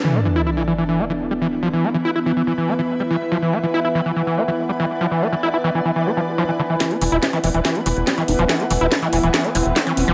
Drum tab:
HH |----------------|----------------|----------------|----------------|
SD |----------------|----------------|----------------|----------------|
BD |----------------|----------------|----------------|----------------|

HH |xxoxxxoxxxoxxxox|xxo-xxoxxxoxxxo-|
SD |o---o---o---o---|o---o---o---o---|
BD |o---o---o---o---|o---o---o---o---|